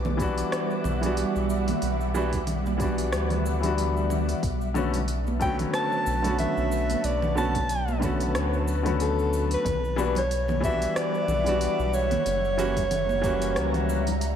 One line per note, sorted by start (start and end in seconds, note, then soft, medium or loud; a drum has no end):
0.00 0.43 B1 loud
0.00 4.39 G3 medium
0.00 4.39 E5 medium
0.00 4.39 F#5 medium
0.00 4.39 D6 medium
0.05 high conga medium
0.05 low conga medium
0.05 cabasa soft
0.17 0.97 E3 medium
0.17 0.98 G3 medium
0.17 0.99 B3 medium
0.17 0.99 D4 medium
0.17 kick loud
0.17 open hi-hat soft
0.17 cabasa medium
0.22 1.00 F#4 medium
0.38 open hi-hat soft
0.38 cabasa soft
0.52 cross-stick medium
0.52 open hi-hat soft
0.52 cabasa soft
0.71 cabasa soft
0.84 1.24 B1 medium
0.84 low conga medium
0.84 cabasa medium
1.01 2.11 E3 medium
1.01 2.11 G3 medium
1.01 2.12 B3 medium
1.01 2.12 D4 medium
1.01 open hi-hat soft
1.01 low conga medium
1.01 cabasa soft
1.06 2.13 F#4 medium
1.17 open hi-hat medium
1.17 cabasa soft
1.35 1.74 B1 medium
1.35 cabasa soft
1.50 cabasa medium
1.68 open hi-hat soft
1.68 high conga medium
1.68 low conga medium
1.68 cabasa soft
1.82 3.14 B1 medium
1.82 open hi-hat soft
1.82 cabasa soft
2.01 cabasa soft
2.14 2.35 E3 medium
2.14 2.36 G3 medium
2.14 2.36 B3 medium
2.14 2.36 D4 medium
2.14 2.37 F#4 loud
2.14 high conga medium
2.14 cabasa medium
2.33 kick medium
2.33 open hi-hat soft
2.33 low conga medium
2.33 cabasa soft
2.47 open hi-hat medium
2.47 low conga medium
2.47 cabasa soft
2.66 high conga medium
2.66 cabasa soft
2.78 3.58 E3 medium
2.78 3.59 G3 medium
2.78 3.59 B3 medium
2.78 3.60 D4 medium
2.78 kick loud
2.78 open hi-hat soft
2.78 cabasa medium
2.82 3.60 F#4 medium
2.98 open hi-hat soft
2.98 cabasa soft
3.12 4.34 D2 loud
3.12 cross-stick medium
3.12 open hi-hat soft
3.12 cabasa soft
3.30 open hi-hat soft
3.30 low conga medium
3.30 cabasa soft
3.46 cabasa medium
3.61 4.40 E3 medium
3.61 4.41 G3 medium
3.61 4.41 B3 medium
3.61 4.42 D4 medium
3.61 open hi-hat soft
3.61 low conga medium
3.61 cabasa soft
3.66 4.43 F#4 medium
3.78 open hi-hat medium
3.78 cabasa soft
3.97 cabasa soft
4.10 low conga medium
4.10 cabasa medium
4.29 open hi-hat soft
4.29 cabasa soft
4.43 5.65 B1 medium
4.43 9.61 F#3 medium
4.43 9.61 B4 medium
4.43 9.61 A5 medium
4.43 kick loud
4.43 open hi-hat medium
4.43 cabasa soft
4.61 cabasa soft
4.74 4.96 D3 medium
4.74 4.96 A3 medium
4.74 4.96 B3 medium
4.74 4.97 C#4 medium
4.74 4.97 F#4 medium
4.74 high conga medium
4.74 low conga medium
4.74 cabasa medium
4.94 open hi-hat soft
4.94 low conga medium
4.94 cabasa soft
5.08 open hi-hat medium
5.08 cabasa soft
5.27 high conga medium
5.27 cabasa soft
5.40 6.19 D3 medium
5.40 6.20 A3 medium
5.40 6.20 B3 medium
5.40 6.21 C#4 medium
5.40 5.57 G5 loud
5.40 kick medium
5.40 open hi-hat soft
5.40 cabasa medium
5.44 6.22 F#3 medium
5.59 open hi-hat soft
5.59 low conga medium
5.59 cabasa soft
5.74 6.36 A5 loud
5.74 cross-stick medium
5.74 open hi-hat soft
5.74 cabasa soft
5.92 cabasa soft
6.06 6.46 B1 medium
6.06 cabasa medium
6.22 7.32 D3 medium
6.22 7.33 A3 medium
6.22 7.33 B3 medium
6.22 7.34 C#4 medium
6.22 open hi-hat soft
6.22 low conga medium
6.22 cabasa soft
6.27 7.35 F#4 medium
6.39 7.07 E5 medium
6.39 open hi-hat medium
6.39 low conga medium
6.39 cabasa soft
6.57 6.95 B1 medium
6.57 cabasa soft
6.72 cabasa medium
6.90 open hi-hat soft
6.90 high conga medium
6.90 cabasa soft
7.04 8.36 B1 medium
7.04 7.37 D5 loud
7.04 open hi-hat medium
7.04 cabasa soft
7.22 low conga medium
7.22 cabasa soft
7.35 7.57 D3 medium
7.35 7.57 A3 medium
7.35 7.57 B3 medium
7.35 7.58 C#4 medium
7.35 7.58 F#4 loud
7.35 7.99 A5 medium
7.35 high conga medium
7.35 cabasa medium
7.55 kick medium
7.55 open hi-hat soft
7.55 low conga medium
7.55 cabasa soft
7.69 open hi-hat medium
7.69 cabasa soft
7.88 high conga medium
7.88 cabasa soft
8.00 8.80 D3 medium
8.00 8.81 A3 medium
8.00 8.81 B3 medium
8.00 8.82 C#4 medium
8.00 kick medium
8.00 open hi-hat soft
8.00 low conga medium
8.00 cabasa medium
8.04 8.82 F#4 medium
8.20 open hi-hat soft
8.20 cabasa soft
8.35 9.56 D2 loud
8.35 cross-stick medium
8.35 open hi-hat soft
8.35 cabasa soft
8.53 cabasa soft
8.68 cabasa medium
8.83 9.62 D3 medium
8.83 9.63 A3 medium
8.83 9.63 B3 medium
8.83 9.64 C#4 medium
8.83 open hi-hat soft
8.83 low conga medium
8.83 cabasa soft
8.88 9.64 F#4 medium
9.00 9.48 A4 medium
9.00 open hi-hat medium
9.00 cabasa soft
9.19 cabasa soft
9.33 cabasa medium
9.51 10.13 B4 loud
9.51 open hi-hat soft
9.51 cabasa soft
9.65 10.87 B1 loud
9.65 12.24 G3 medium
9.65 14.36 E5 medium
9.65 14.36 F#5 medium
9.65 kick loud
9.65 open hi-hat medium
9.65 low conga medium
9.65 cabasa soft
9.85 cabasa soft
9.96 10.18 E3 medium
9.96 10.18 G3 medium
9.96 10.18 B3 medium
9.96 10.19 D4 medium
9.96 10.19 F#4 loud
9.96 high conga medium
9.96 cabasa medium
10.15 10.61 C#5 medium
10.15 open hi-hat soft
10.15 low conga medium
10.15 cabasa soft
10.31 open hi-hat medium
10.31 cabasa soft
10.48 high conga medium
10.48 low conga medium
10.48 cabasa soft
10.60 11.41 E3 medium
10.60 11.41 G3 medium
10.60 11.42 B3 medium
10.60 11.42 D4 medium
10.60 10.98 E5 loud
10.60 kick loud
10.60 open hi-hat soft
10.60 cabasa medium
10.65 11.43 F#4 loud
10.82 open hi-hat soft
10.82 cabasa soft
10.96 11.96 D5 loud
10.96 cross-stick medium
10.96 open hi-hat medium
10.96 cabasa soft
11.15 cabasa soft
11.28 11.68 B1 medium
11.28 low conga medium
11.28 cabasa medium
11.44 12.23 E3 medium
11.44 12.24 G3 medium
11.44 12.24 B3 medium
11.44 12.25 D4 medium
11.44 open hi-hat soft
11.44 low conga medium
11.44 cabasa soft
11.49 12.25 F#4 medium
11.61 open hi-hat medium
11.61 cabasa soft
11.79 12.17 B1 medium
11.79 cabasa soft
11.94 14.22 C#5 loud
11.94 cabasa medium
12.11 open hi-hat soft
12.11 high conga medium
12.11 low conga medium
12.11 cabasa soft
12.26 13.58 F#1 loud
12.26 14.36 G3 medium
12.26 14.36 A#5 medium
12.26 open hi-hat medium
12.26 cabasa soft
12.45 cabasa soft
12.57 12.79 E3 medium
12.57 12.79 G3 medium
12.57 12.79 A#3 medium
12.57 12.80 C#4 medium
12.57 12.80 F#4 loud
12.57 open hi-hat soft
12.57 high conga medium
12.57 cabasa medium
12.76 kick medium
12.76 open hi-hat soft
12.76 low conga medium
12.76 cabasa soft
12.91 open hi-hat medium
12.91 low conga medium
12.91 cabasa soft
13.09 high conga medium
13.09 cabasa soft
13.21 14.02 E3 medium
13.21 14.02 G3 medium
13.21 14.03 A#3 medium
13.21 14.03 C#4 medium
13.21 kick loud
13.21 open hi-hat soft
13.21 cabasa medium
13.26 14.04 F#4 medium
13.42 open hi-hat soft
13.42 cabasa soft
13.56 14.36 C#2 medium
13.56 cross-stick medium
13.56 open hi-hat medium
13.56 cabasa soft
13.74 open hi-hat soft
13.74 low conga medium
13.74 cabasa soft
13.89 cabasa medium
14.07 open hi-hat soft
14.07 low conga medium
14.07 cabasa soft
14.21 open hi-hat medium
14.21 cabasa soft